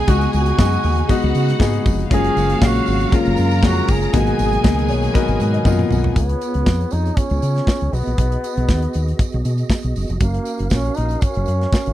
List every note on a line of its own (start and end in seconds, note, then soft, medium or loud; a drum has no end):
0.00 4.09 C#3 medium
0.00 0.07 G#3 medium
0.00 2.06 G#3 medium
0.00 0.08 B3 medium
0.00 2.06 B3 medium
0.00 0.08 D#4 medium
0.00 0.08 F#4 medium
0.00 2.06 F#4 medium
0.00 0.10 G#4 loud
0.00 1.06 G#4 medium
0.00 1.06 G#5 loud
0.07 0.25 C#2 loud
0.07 0.42 G#3 medium
0.07 0.42 B3 medium
0.07 0.42 D#4 medium
0.07 0.42 F#4 loud
0.07 0.34 F#4 loud
0.07 kick loud
0.07 closed hi-hat medium
0.07 tambourine medium
0.21 closed hi-hat medium
0.33 0.51 C#2 loud
0.33 1.31 F#4 loud
0.33 closed hi-hat medium
0.33 tambourine medium
0.46 closed hi-hat medium
0.57 0.76 F#2 medium
0.57 0.92 G#3 medium
0.57 0.92 B3 medium
0.57 0.93 D#4 medium
0.57 0.93 F#4 medium
0.57 kick loud
0.57 snare loud
0.57 tambourine medium
0.72 closed hi-hat soft
0.83 1.01 D#2 loud
0.83 open hi-hat medium
0.83 tambourine medium
0.98 closed hi-hat soft
1.08 1.43 G#3 loud
1.08 1.43 B3 medium
1.08 1.43 D#4 medium
1.08 1.83 F#4 medium
1.08 1.44 F#4 loud
1.08 1.83 F#5 medium
1.08 kick loud
1.08 closed hi-hat medium
1.08 tambourine medium
1.22 1.31 C#2 loud
1.22 closed hi-hat soft
1.35 1.52 C#3 loud
1.35 closed hi-hat medium
1.35 tambourine medium
1.48 snare soft
1.48 closed hi-hat soft
1.48 tambourine soft
1.59 1.77 G#2 loud
1.59 1.93 G#3 medium
1.59 1.94 B3 medium
1.59 1.94 D#4 medium
1.59 1.94 G#4 loud
1.59 kick loud
1.59 snare loud
1.59 tambourine medium
1.73 closed hi-hat soft
1.86 2.03 F1 medium
1.86 kick loud
1.86 open hi-hat medium
1.86 tambourine medium
2.00 closed hi-hat soft
2.10 2.28 F#1 loud
2.10 4.11 F#3 medium
2.10 2.44 G#3 medium
2.10 4.11 A#3 medium
2.10 2.44 A#3 medium
2.10 2.45 C#4 medium
2.10 2.45 F4 loud
2.10 3.09 F#4 medium
2.10 4.10 F5 medium
2.10 3.09 F5 medium
2.10 kick loud
2.10 closed hi-hat medium
2.10 tambourine medium
2.14 2.68 G#4 loud
2.24 closed hi-hat medium
2.36 2.53 F#1 loud
2.36 closed hi-hat medium
2.36 tambourine medium
2.50 closed hi-hat medium
2.61 2.79 A#1 loud
2.61 2.95 G#3 medium
2.61 2.96 A#3 medium
2.61 2.96 C#4 medium
2.61 2.96 F5 medium
2.61 kick loud
2.61 snare loud
2.61 tambourine medium
2.66 3.16 F#4 loud
2.76 closed hi-hat soft
2.86 3.05 G#1 medium
2.86 open hi-hat medium
2.86 tambourine medium
3.00 closed hi-hat medium
3.00 tambourine soft
3.11 3.46 G#3 medium
3.11 3.46 A#3 medium
3.11 3.47 C#4 medium
3.11 3.47 F4 medium
3.11 3.68 F4 loud
3.11 4.11 A#4 medium
3.11 4.11 A#5 medium
3.11 kick loud
3.11 closed hi-hat medium
3.11 tambourine soft
3.25 3.34 F#1 loud
3.25 closed hi-hat soft
3.25 tambourine soft
3.37 3.63 F#2 loud
3.37 closed hi-hat medium
3.37 tambourine medium
3.51 closed hi-hat soft
3.51 tambourine soft
3.63 3.80 F2 loud
3.63 3.97 G#3 medium
3.63 3.97 A#3 medium
3.63 3.97 C#4 medium
3.63 3.97 F4 medium
3.63 3.93 F#4 loud
3.63 kick loud
3.63 snare loud
3.63 tambourine medium
3.76 closed hi-hat soft
3.88 4.06 F#1 loud
3.88 5.67 G#4 loud
3.88 kick loud
3.88 open hi-hat medium
3.88 tambourine medium
4.01 closed hi-hat soft
4.01 tambourine soft
4.13 4.31 G#1 loud
4.13 6.14 B2 medium
4.13 6.14 D#3 medium
4.13 6.14 F#3 medium
4.13 6.13 G#3 medium
4.13 4.47 A#3 medium
4.13 4.47 B3 medium
4.13 4.47 D#4 medium
4.13 4.48 F#4 medium
4.13 6.12 G#4 medium
4.13 6.12 G#5 loud
4.13 kick loud
4.13 closed hi-hat medium
4.13 tambourine medium
4.27 closed hi-hat medium
4.39 4.56 G#1 medium
4.39 closed hi-hat medium
4.39 tambourine medium
4.53 closed hi-hat soft
4.63 4.90 C#2 medium
4.63 4.97 A#3 medium
4.63 4.98 B3 medium
4.63 4.98 D#4 medium
4.63 4.98 G#4 loud
4.63 kick loud
4.63 snare loud
4.63 tambourine medium
4.79 closed hi-hat medium
4.88 5.07 B1 loud
4.88 5.13 C#5 medium
4.88 closed hi-hat medium
4.88 tambourine medium
5.02 closed hi-hat medium
5.02 tambourine soft
5.14 5.48 B3 medium
5.14 5.48 D#4 medium
5.14 5.48 F#4 loud
5.14 5.48 A#4 loud
5.14 5.50 B4 medium
5.14 kick loud
5.14 closed hi-hat medium
5.14 tambourine medium
5.28 5.36 G#1 loud
5.28 closed hi-hat soft
5.28 tambourine soft
5.40 5.58 G#2 loud
5.40 closed hi-hat medium
5.40 tambourine medium
5.53 5.64 D#5 medium
5.53 closed hi-hat soft
5.65 5.82 F#2 loud
5.65 5.99 A#3 medium
5.65 5.99 B3 medium
5.65 5.99 D#4 medium
5.65 5.99 F4 loud
5.65 5.89 D#5 medium
5.65 kick loud
5.65 high tom medium
5.65 tambourine medium
5.79 mid tom medium
5.90 6.08 B1 loud
5.90 6.14 F#5 medium
5.90 mid tom medium
5.90 tambourine medium
6.04 floor tom medium
6.15 6.34 C#2 medium
6.15 10.16 B3 medium
6.15 6.94 B3 medium
6.15 7.91 F4 medium
6.15 10.16 G#4 medium
6.15 7.91 C#5 medium
6.15 kick loud
6.15 closed hi-hat medium
6.15 tambourine medium
6.29 closed hi-hat medium
6.41 closed hi-hat medium
6.41 tambourine medium
6.54 6.63 C#2 medium
6.54 closed hi-hat soft
6.66 6.84 F2 medium
6.66 kick loud
6.66 snare loud
6.66 tambourine medium
6.81 closed hi-hat soft
6.91 7.09 F2 medium
6.91 7.19 D#4 medium
6.91 closed hi-hat medium
6.91 tambourine soft
7.05 closed hi-hat soft
7.05 tambourine soft
7.17 7.96 C#4 loud
7.17 kick loud
7.17 closed hi-hat medium
7.17 tambourine medium
7.30 7.39 C#2 loud
7.30 closed hi-hat soft
7.30 tambourine soft
7.42 7.60 C#3 loud
7.42 closed hi-hat medium
7.42 tambourine medium
7.56 snare soft
7.56 closed hi-hat soft
7.67 kick medium
7.67 snare loud
7.67 tambourine medium
7.81 7.90 C#2 medium
7.81 closed hi-hat soft
7.93 8.02 B1 loud
7.93 9.46 B3 medium
7.93 11.93 F#4 medium
7.93 10.18 D#5 medium
7.93 open hi-hat medium
7.93 tambourine medium
8.06 8.15 A#1 medium
8.06 closed hi-hat soft
8.06 tambourine soft
8.18 8.35 B1 medium
8.18 kick loud
8.18 closed hi-hat medium
8.18 tambourine medium
8.32 closed hi-hat medium
8.44 closed hi-hat medium
8.44 tambourine medium
8.57 8.65 B1 medium
8.57 closed hi-hat soft
8.69 8.86 D#2 medium
8.69 kick loud
8.69 snare medium
8.69 tambourine medium
8.82 closed hi-hat soft
8.93 9.12 D#2 medium
8.93 closed hi-hat medium
8.93 tambourine soft
9.08 closed hi-hat soft
9.19 kick loud
9.19 closed hi-hat medium
9.19 tambourine medium
9.32 9.42 B1 loud
9.32 closed hi-hat soft
9.45 9.62 B2 loud
9.45 closed hi-hat medium
9.45 tambourine medium
9.58 closed hi-hat soft
9.58 tambourine soft
9.70 kick medium
9.70 snare loud
9.70 tambourine medium
9.83 9.92 B1 medium
9.83 closed hi-hat soft
9.96 10.05 F#1 medium
9.96 open hi-hat medium
9.96 tambourine medium
10.08 10.17 F1 medium
10.08 closed hi-hat soft
10.08 tambourine soft
10.20 10.38 F#1 loud
10.20 10.75 A#3 medium
10.20 11.93 C#4 medium
10.20 11.93 A#4 medium
10.20 11.93 F5 medium
10.20 kick loud
10.20 closed hi-hat medium
10.20 tambourine soft
10.34 closed hi-hat soft
10.45 closed hi-hat medium
10.45 tambourine medium
10.59 10.68 F#1 medium
10.59 closed hi-hat soft
10.70 10.89 A#1 medium
10.70 10.98 C#4 loud
10.70 kick loud
10.70 snare medium
10.70 tambourine medium
10.85 closed hi-hat soft
10.94 11.15 A#1 medium
10.94 11.25 D#4 medium
10.94 closed hi-hat medium
10.94 tambourine soft
11.09 closed hi-hat soft
11.09 tambourine soft
11.21 11.93 C#4 loud
11.21 kick loud
11.21 closed hi-hat medium
11.21 tambourine soft
11.34 11.44 F#1 medium
11.34 closed hi-hat soft
11.34 tambourine soft
11.46 11.65 F#2 medium
11.46 closed hi-hat medium
11.46 tambourine medium
11.61 snare soft
11.61 closed hi-hat soft
11.73 kick loud
11.73 snare loud
11.73 tambourine medium
11.86 11.93 G#1 medium
11.86 closed hi-hat soft